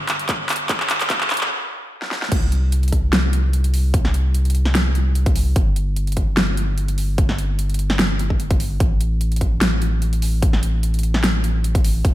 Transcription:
Already playing: sub bass G1
0.09 clap, closed hi-hat
0.19 closed hi-hat
0.29 kick, clap, closed hi-hat
0.49 clap, closed hi-hat, open hi-hat
0.56 closed hi-hat
0.69 kick, clap, closed hi-hat
0.80 clap
0.90 clap, closed hi-hat
1.00 clap, closed hi-hat
1.10 kick, clap, closed hi-hat
1.21 clap
1.30 clap, closed hi-hat
1.34 closed hi-hat
1.37 closed hi-hat
1.41 clap
2.02 snare
2.11 snare
2.22 snare
2.32 sub bass C2, kick, closed hi-hat, crash
2.52 closed hi-hat
2.72 closed hi-hat
2.83 closed hi-hat
2.88 closed hi-hat
2.92 kick, closed hi-hat
3.13 snare, closed hi-hat
3.33 closed hi-hat
3.53 closed hi-hat
3.64 closed hi-hat
3.74 open hi-hat
3.94 kick, closed hi-hat
4.05 snare
4.14 closed hi-hat
4.34 closed hi-hat
4.45 closed hi-hat
4.50 closed hi-hat
4.55 closed hi-hat
4.65 snare
4.75 snare, closed hi-hat
4.95 closed hi-hat
5.15 closed hi-hat
5.26 kick, closed hi-hat
5.36 open hi-hat
5.56 sub bass G1, kick, closed hi-hat
5.76 closed hi-hat
5.96 closed hi-hat
6.07 closed hi-hat
6.12 closed hi-hat
6.17 kick, closed hi-hat
6.37 snare, closed hi-hat
6.57 closed hi-hat
6.78 closed hi-hat
6.88 closed hi-hat
6.98 open hi-hat
7.18 kick, closed hi-hat
7.29 snare
7.38 closed hi-hat
7.59 closed hi-hat
7.70 closed hi-hat
7.74 closed hi-hat
7.79 closed hi-hat
7.90 snare
7.99 snare, closed hi-hat
8.19 closed hi-hat
8.30 kick
8.40 closed hi-hat
8.51 kick, closed hi-hat
8.60 open hi-hat
8.80 sub bass A1, kick, closed hi-hat
9.01 closed hi-hat
9.21 closed hi-hat
9.32 closed hi-hat
9.36 closed hi-hat
9.41 kick, closed hi-hat
9.61 snare, closed hi-hat
9.82 closed hi-hat
10.02 closed hi-hat
10.13 closed hi-hat
10.22 open hi-hat
10.42 kick, closed hi-hat
10.53 snare
10.63 closed hi-hat
10.83 closed hi-hat
10.94 closed hi-hat
10.99 closed hi-hat
11.03 closed hi-hat
11.14 snare
11.24 snare, closed hi-hat
11.44 closed hi-hat
11.64 closed hi-hat
11.75 kick, closed hi-hat
11.84 open hi-hat
12.05 sub bass E1, kick, closed hi-hat

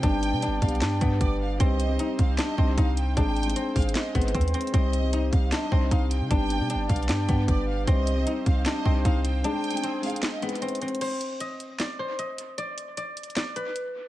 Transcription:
Already playing: guzheng C4 C5, analog synth pad G4
0.02 808-style bass G1, grand piano G3 B3 D4 G4, analog synth pad B3 D5, guzheng D4, violin section G5, kick, closed hi-hat
0.23 closed hi-hat
0.32 808-style bass B2, grand piano B3 D4 G4
0.42 guzheng D4, closed hi-hat
0.47 808-style bass G1
0.60 808-style bass B1, grand piano G3 B3 D4 G4, violin section F5, kick, closed hi-hat
0.69 closed hi-hat
0.75 closed hi-hat
0.82 808-style bass G2, guzheng D4, violin section G5, snare, clap, closed hi-hat
1.00 808-style bass G2, grand piano G3 B3 D4 G4, guzheng B3, kick, closed hi-hat
1.21 808-style bass G1, violin section D5, kick, closed hi-hat
1.40 violin section F5
1.58 808-style bass C2, grand piano G3 C4 D#4 G4, guzheng C4, analog synth pad C4 C5, violin section D#5, kick, closed hi-hat
1.80 closed hi-hat
1.88 grand piano G3 C4 D#4 G4
1.99 guzheng D#4, closed hi-hat
2.17 808-style bass C2, grand piano G3 C4 D#4 G4, violin section F5, kick, closed hi-hat
2.38 guzheng D4, violin section D#5, snare, clap, closed hi-hat
2.56 808-style bass C2, grand piano G3 C4 D#4 G4, guzheng C4, kick
2.78 808-style bass C2, guzheng D#4, violin section F5, kick, closed hi-hat
2.97 violin section G5, closed hi-hat
3.15 808-style bass G#1, grand piano G#3 C4 D#4 G#4, analog synth pad C4 G#4, guzheng D4, violin section G5, kick, closed hi-hat
3.37 closed hi-hat
3.43 grand piano G#3 C4 D#4, closed hi-hat
3.48 grand piano G#4, closed hi-hat
3.56 guzheng C4, closed hi-hat
3.74 808-style bass G#1, grand piano G#3 C4 D#4 G#4, violin section F5, kick, closed hi-hat, open hi-hat
3.82 closed hi-hat
3.89 closed hi-hat
3.95 violin section D#5, snare, clap, closed hi-hat
4.13 808-style bass G#1, grand piano G#3 C4 D#4 G#4, guzheng B3, kick, closed hi-hat
4.21 closed hi-hat
4.28 closed hi-hat
4.34 808-style bass D#2, guzheng C4, kick, closed hi-hat
4.41 closed hi-hat
4.48 closed hi-hat
4.54 guzheng C4, closed hi-hat, open hi-hat
4.61 closed hi-hat
4.67 closed hi-hat
4.72 808-style bass C2, grand piano G3 C4 D#4 G4, guzheng C4, analog synth pad G4, violin section D#5, kick, closed hi-hat
4.93 closed hi-hat
5.02 grand piano G3 C4 D#4 G4
5.13 guzheng D#4, closed hi-hat
5.31 808-style bass C2, grand piano G3 C4 D#4 G4, violin section F5, kick, closed hi-hat
5.52 guzheng D4, violin section D#5, snare, clap, closed hi-hat
5.70 808-style bass C2, grand piano G3 C4 D#4 G4, guzheng C4, kick
5.91 808-style bass C2, guzheng D#4, violin section F5, kick, closed hi-hat
6.11 violin section G5, closed hi-hat
6.21 808-style bass C3
6.29 808-style bass G1, grand piano G3 B3 D4 G4, analog synth pad B3 D5, guzheng D4, violin section G5, kick, closed hi-hat
6.50 closed hi-hat
6.58 808-style bass B2, grand piano G3 B3 D4 G4
6.70 guzheng D4, closed hi-hat
6.75 808-style bass G1
6.88 808-style bass B1, grand piano G3 B3 D4 G4, violin section F5, kick, closed hi-hat
6.96 closed hi-hat
7.03 closed hi-hat
7.09 808-style bass G2, guzheng D4, violin section G5, snare, clap, closed hi-hat
7.27 808-style bass G2, grand piano G3 B3 D4 G4, guzheng B3, kick, closed hi-hat
7.48 808-style bass G1, violin section D5, kick, closed hi-hat
7.68 violin section F5
7.86 808-style bass C2, grand piano G3 C4 D#4 G4, guzheng C4, analog synth pad C4 C5, violin section D#5, kick, closed hi-hat
8.07 closed hi-hat
8.15 grand piano G3 C4 D#4 G4
8.27 guzheng D#4, closed hi-hat
8.45 808-style bass C2, grand piano G3 C4 D#4 G4, violin section F5, kick, closed hi-hat
8.66 guzheng D4, violin section D#5, snare, clap, closed hi-hat
8.84 808-style bass C2, grand piano G3 C4 D#4 G4, guzheng C4, kick
9.05 808-style bass C2, guzheng D#4, violin section F5, kick, closed hi-hat
9.25 violin section G5, closed hi-hat
9.43 grand piano G#3 C4 D#4 G#4, analog synth pad C4 G#4, guzheng D4, violin section G5, closed hi-hat
9.64 closed hi-hat
9.70 grand piano G#3 C4 D#4, closed hi-hat
9.75 grand piano G#4, closed hi-hat
9.83 guzheng C4, closed hi-hat
10.01 grand piano G#3 C4 D#4 G#4, violin section F5, closed hi-hat, open hi-hat
10.10 closed hi-hat
10.16 closed hi-hat
10.23 violin section D#5, snare, clap, closed hi-hat
10.41 grand piano G#3 C4 D#4 G#4, guzheng B3, closed hi-hat
10.49 closed hi-hat
10.55 closed hi-hat
10.62 guzheng C4, closed hi-hat
10.68 closed hi-hat
10.75 closed hi-hat
10.81 guzheng C4, closed hi-hat, open hi-hat
10.88 closed hi-hat
10.95 closed hi-hat
11.01 guzheng C5, closed hi-hat, crash
11.21 closed hi-hat
11.40 guzheng D#5, closed hi-hat
11.60 closed hi-hat
11.80 guzheng D5, snare, clap, closed hi-hat
11.99 guzheng C5
12.19 guzheng D#5, closed hi-hat
12.38 closed hi-hat
12.58 guzheng D5, closed hi-hat
12.78 closed hi-hat
12.97 guzheng D5, closed hi-hat
13.17 closed hi-hat
13.23 closed hi-hat
13.30 closed hi-hat
13.37 guzheng D5, snare, clap, closed hi-hat
13.56 guzheng B4, closed hi-hat
13.76 closed hi-hat

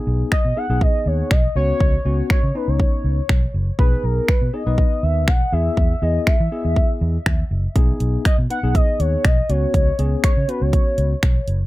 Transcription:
Already playing: tine electric piano B3 D#4 G#4
0.07 fingered electric bass B1
0.32 soft synth lead D#5, finger snap, muted fingered electric bass stroke, kick
0.45 fingered electric bass B2
0.56 tine electric piano B3 D#4 G#4, soft synth lead F#5
0.70 fingered electric bass B1, tine electric piano B3 D#4 G#4
0.81 soft synth lead D#5, kick
1.06 fingered electric bass D#2, soft synth lead C#5
1.31 fingered electric bass B1, soft synth lead D#5, finger snap, kick
1.56 fingered electric bass C#2, tine electric piano B3 C#4 F#4, soft synth lead C#5
1.80 fingered electric bass C#2, kick
2.05 fingered electric bass C#2, tine electric piano B3 C#4 F#4
2.30 soft synth lead C#5, finger snap, muted fingered electric bass stroke, kick
2.43 fingered electric bass C#3
2.55 tine electric piano B3 C#4 D#4, soft synth lead B4
2.68 fingered electric bass C#2, soft synth lead C#5
2.80 kick
3.04 fingered electric bass C#2
3.29 fingered electric bass B1, finger snap, kick
3.54 fingered electric bass F#1
3.79 fingered electric bass B1, tine electric piano B3 D#4 G#4, soft synth lead B4, kick
4.04 fingered electric bass B1, soft synth lead A#4
4.28 soft synth lead B4, finger snap, muted fingered electric bass stroke, kick
4.42 fingered electric bass B2
4.53 tine electric piano B3 D#4 G#4, soft synth lead D#5
4.66 fingered electric bass B1, tine electric piano B3 D#4 B4
4.78 kick
5.03 fingered electric bass D#2, soft synth lead E5
5.28 fingered electric bass B1, soft synth lead F#5, finger snap, kick
5.52 fingered electric bass E2, tine electric piano B3 E4 G#4, soft synth lead E5
5.77 fingered electric bass E2, kick
6.02 fingered electric bass E2, tine electric piano B3 E4 G#4, soft synth lead D#5
6.27 soft synth lead E5, finger snap, muted fingered electric bass stroke, kick
6.40 fingered electric bass E3
6.52 tine electric piano B3 E4 G#4
6.65 fingered electric bass E2
6.76 kick
7.01 fingered electric bass E2
7.26 fingered electric bass D#2, finger snap, kick
7.51 fingered electric bass F#1
7.76 fingered electric bass B1, tine electric piano B3 D#4 G#4, kick, closed hi-hat
8.00 fingered electric bass B1, closed hi-hat
8.25 soft synth lead D#5, finger snap, muted fingered electric bass stroke, kick, closed hi-hat
8.38 fingered electric bass B2
8.50 tine electric piano B3 D#4 B4, soft synth lead F#5, closed hi-hat
8.63 fingered electric bass B1, tine electric piano B3 D#4 G#4
8.75 soft synth lead D#5, kick, closed hi-hat
9.00 fingered electric bass D#2, soft synth lead C#5, closed hi-hat
9.25 fingered electric bass B1, soft synth lead D#5, finger snap, kick, closed hi-hat
9.49 fingered electric bass C#2, tine electric piano B3 C#4 F#4, soft synth lead C#5, closed hi-hat
9.74 fingered electric bass C#2, kick, closed hi-hat
9.99 fingered electric bass C#2, tine electric piano B3 C#4 G#4, closed hi-hat
10.24 soft synth lead C#5, finger snap, muted fingered electric bass stroke, kick, closed hi-hat
10.37 fingered electric bass C#3
10.48 tine electric piano B3 C#4 F#4, soft synth lead B4, closed hi-hat
10.61 fingered electric bass C#2, soft synth lead C#5
10.73 kick, closed hi-hat
10.98 fingered electric bass C#2, closed hi-hat
11.23 fingered electric bass B1, finger snap, kick, closed hi-hat
11.48 fingered electric bass F#1, closed hi-hat

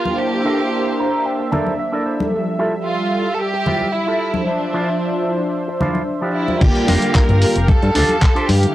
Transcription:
Already playing: analog synth pad A#3 G4 F5, clean electric guitar F4 G4 A#4, violin section F4
0.05 analog polysynth A#3 D4 E4 C5 A5, high conga
0.18 analog synth pad D4 C5 E5, violin section G4
0.45 clean electric guitar D4 E4 A4 A#4 C5
0.72 muted clean electric guitar stroke
0.98 analog polysynth A#3 D4 E4 A4 C5, clean electric guitar A#5
1.26 clean electric guitar G5
1.39 muted clean electric guitar stroke
1.52 clean electric guitar D4 E4 A4 A#4 C5 D5, high conga, low conga
1.67 high conga
1.79 clean electric guitar E5
1.92 clean electric guitar D4 E4 A4 A#4 D5
2.06 clean electric guitar C5
2.19 analog polysynth F3 G3 A4 E5, high conga
2.32 analog synth pad G3
2.59 clean electric guitar E4 F4 G4 A4
2.86 violin section F4, muted clean electric guitar stroke
3.13 analog polysynth G3 E4 F4 A4
3.33 violin section A4
3.40 violin section G4
3.53 muted clean electric guitar stroke
3.66 clean electric guitar E4 F4 G4 C5, high conga, low conga
3.81 high conga
3.94 violin section E4
4.07 clean electric guitar E4 F4 G4 A4
4.33 analog polysynth F3 D4 C5 E5, high conga
4.47 analog synth pad F3 D4 C5, violin section D4
4.73 clean electric guitar F3 D4 E4 F4 C5
5.00 muted clean electric guitar stroke
5.27 analog polysynth F3 D4 E4 C5
5.68 muted clean electric guitar stroke
5.80 clean electric guitar F3 D4 E4 F4 C5, high conga, low conga
5.95 high conga
6.21 clean electric guitar F3 D4 E4 F4 G4
6.35 violin section E4
6.48 analog polysynth G3 D4 F4 A#4, high conga
6.60 analog synth bass G1, analog polysynth D3 G3 A#3 F4, analog synth pad G4 F5, violin section G4, kick, closed hi-hat, crash
6.75 closed hi-hat
6.87 analog synth bass F1, clean electric guitar D4 F4 G4 A#4, open hi-hat, high conga
7.02 closed hi-hat
7.15 violin section A#4, kick, clap, closed hi-hat
7.29 analog synth bass G1, closed hi-hat, high conga
7.41 analog polysynth D3 G3 A#3 F4, open hi-hat
7.55 analog synth bass F1, muted clean electric guitar stroke, closed hi-hat
7.68 analog synth bass G2, violin section A4, kick, closed hi-hat, high conga
7.83 analog synth bass G2, closed hi-hat
7.94 analog synth bass D2, clean electric guitar D4 F4 G4 A4, open hi-hat, low conga
8.09 closed hi-hat, high conga
8.22 kick, clap, closed hi-hat
8.35 clean electric guitar D4 F4 G4 C5, closed hi-hat
8.49 analog synth bass G2, violin section G4, open hi-hat, high conga
8.62 analog polysynth D3 A#3 E4, muted clean electric guitar stroke, closed hi-hat

